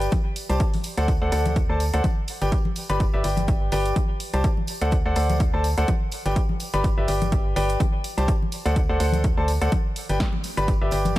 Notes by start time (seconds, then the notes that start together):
Already playing: G4 B4 D5 G5
0.02 closed hi-hat, tambourine
0.12 kick, closed hi-hat, tambourine, high conga
0.36 open hi-hat, tambourine
0.49 C2 G4 C5 D5 A5, closed hi-hat, tambourine
0.60 kick, closed hi-hat
0.74 open hi-hat, high conga
0.84 open hi-hat, tambourine
0.97 D2 A4 C5 D5 F#5, closed hi-hat, tambourine
1.08 kick, closed hi-hat, tambourine
1.22 D2 A4 C5 D5 F#5
1.32 D2 A4 C5 D5 F#5, open hi-hat, tambourine
1.46 closed hi-hat, tambourine, high conga
1.56 kick, closed hi-hat, tambourine
1.69 D2 A4 C5 D5 A5
1.80 open hi-hat, tambourine
1.93 D2 A4 C5 D5 F#5, closed hi-hat, tambourine
2.04 kick, closed hi-hat, tambourine, high conga
2.28 open hi-hat, tambourine
2.41 G1 G4 B4 D5 G5, closed hi-hat, tambourine
2.52 kick, closed hi-hat, tambourine
2.65 high conga
2.76 open hi-hat, tambourine
2.89 G1 G4 B4 D5 B5, closed hi-hat, tambourine
3.00 kick, closed hi-hat, tambourine
3.14 G1 G4 B4 D5 E5
3.24 G1 G4 B4 D5 G5, open hi-hat, tambourine
3.37 closed hi-hat, tambourine, high conga
3.47 kick, closed hi-hat, tambourine
3.72 G1 G4 B4 D5 G5, open hi-hat, tambourine
3.86 closed hi-hat, tambourine
3.96 kick, closed hi-hat, tambourine, high conga
4.20 open hi-hat, tambourine
4.33 C2 G4 C5 D5 A5, closed hi-hat, tambourine
4.44 kick, closed hi-hat, tambourine
4.57 high conga
4.67 open hi-hat, tambourine
4.81 D2 A4 C5 D5 F#5, closed hi-hat, tambourine
4.91 kick, closed hi-hat, tambourine
5.06 D2 A4 C5 D5 F#5
5.16 D2 A4 C5 D5 F#5, open hi-hat, tambourine
5.29 closed hi-hat, tambourine, high conga
5.40 kick, closed hi-hat, tambourine
5.53 D2 A4 C5 D5 A5
5.64 open hi-hat, tambourine
5.78 D2 A4 C5 D5 F#5, closed hi-hat, tambourine
5.88 kick, closed hi-hat, tambourine, high conga
6.11 open hi-hat, tambourine
6.25 G1 G4 B4 D5 G5, closed hi-hat, tambourine
6.36 kick, closed hi-hat
6.49 high conga
6.60 open hi-hat, tambourine
6.73 G1 G4 B4 D5 B5, closed hi-hat, tambourine
6.84 kick, closed hi-hat, tambourine
6.98 G1 G4 B4 D5 E5
7.08 G1 G4 B4 D5 G5, open hi-hat, tambourine
7.22 closed hi-hat, tambourine, high conga
7.32 kick, closed hi-hat, tambourine
7.56 G1 G4 B4 D5 G5, open hi-hat, tambourine
7.69 closed hi-hat, tambourine
7.80 kick, closed hi-hat, tambourine, high conga
8.04 open hi-hat, tambourine
8.17 C2 G4 C5 D5 A5, closed hi-hat, tambourine
8.28 kick, closed hi-hat, tambourine
8.42 high conga
8.52 open hi-hat, tambourine
8.65 D2 A4 C5 D5 F#5, closed hi-hat, tambourine
8.76 kick, closed hi-hat
8.89 D2 A4 C5 D5 F#5
9.00 D2 A4 C5 D5 F#5, open hi-hat, tambourine
9.12 closed hi-hat, tambourine, high conga
9.24 kick, closed hi-hat, tambourine
9.37 D2 A4 C5 D5 A5
9.48 open hi-hat, tambourine
9.61 D2 A4 C5 D5 F#5, closed hi-hat, tambourine
9.72 kick, closed hi-hat, tambourine, high conga
9.96 open hi-hat, tambourine
10.09 G1 G4 B4 D5 G5, closed hi-hat, tambourine
10.20 kick, snare, closed hi-hat
10.33 high conga
10.44 open hi-hat, tambourine
10.57 G1 G4 B4 D5 B5, closed hi-hat, tambourine
10.68 kick, closed hi-hat, tambourine
10.81 G1 G4 B4 D5 E5
10.91 G1 G4 B4 D5 G5, open hi-hat, tambourine
11.05 closed hi-hat, tambourine, high conga
11.15 tambourine